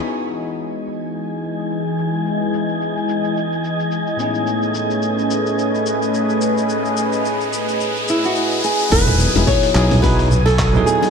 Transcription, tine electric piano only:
X:1
M:4/4
L:1/16
Q:"Swing 16ths" 1/4=108
K:E
V:1 name="Tine electric piano"
[B,DEFG]16- | [B,DEFG]12- [B,DEFG]2 [A,,B,CDEG]2- | [A,,B,CDEG]16- | [A,,B,CDEG]12- [A,,B,CDEG]2 z2 |
[F,B,DEG]3 [F,B,DEG]3 [F,B,DEG]2 [F,B,DEG]2 z3 [F,B,DEG]3 |]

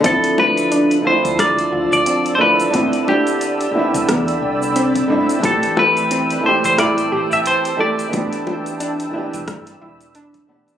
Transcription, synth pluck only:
X:1
M:4/4
L:1/16
Q:"Swing 16ths" 1/4=89
K:Ddor
V:1 name="Synth pluck"
C2 z2 D2 E2 z2 F2 C2 z2 | C z D z3 E2 B, z3 C z D z | z2 A2 C z3 E z G z3 A2 | B, z3 D z E z3 E2 D2 B,2 |]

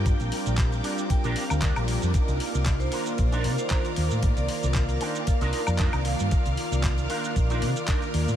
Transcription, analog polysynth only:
X:1
M:4/4
L:1/8
Q:"Swing 16ths" 1/4=115
K:Cdor
V:1 name="Analog polysynth"
[G,CDF]3 [G,CDF]4- [G,CDF] | [B,DEF]3 [E,B,Fd]4- [E,B,Fd] | [E,B,Fd]3 [E,B,Fd]4- [E,B,Fd] | [E,B,Fd]3 [E,B,Fd]4- [E,B,Fd] |]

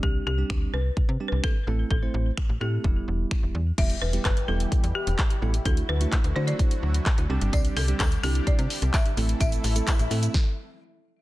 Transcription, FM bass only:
X:1
M:4/4
L:1/16
Q:1/4=128
K:Em
V:1 name="FM bass" clef=bass
C,,2 C,,2 D,,2 C,,2 C, C, z C,, z2 A,,,2 | A,,,2 A,,,2 z A,,, A,,2 E,,,2 E,,,2 z E,,, E,,2 | E,,,2 E,,,2 G,,,2 E,,,2 E,, E,, z E,,, z2 A,,,2 | D,,2 D,,2 z D,, D,2 z2 D,,2 z D,, C,, G,,, |
C,,2 C,,2 D,,2 C,,2 C, C, z C,, z2 A,,,2 | A,,,2 A,,,2 z A,,, A,,2 z8 |]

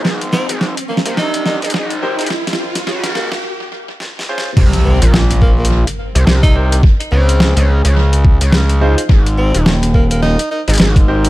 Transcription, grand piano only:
X:1
M:4/4
L:1/8
Q:"Swing 16ths" 1/4=106
K:Cphr
V:1 name="Grand piano"
z6 z [EGBc] | z6 z [DFAc] | z6 z [EGBc] | z6 z [EFAc] |
z6 z [EGBc] |]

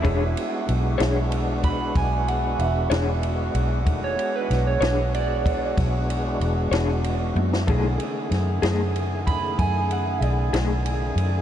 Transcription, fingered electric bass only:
X:1
M:12/8
L:1/8
Q:3/8=63
K:Emix
V:1 name="Fingered electric bass" clef=bass
E,,, z B,,, B,,,3 B,,,2 E,,, E,,,2 B,,, | E,,, z B,,, B,,,3 B,,,2 E,,, E,,,2 F,, | B,,, z F,, F,,3 F,,2 B,,, B,,,2 F,, |]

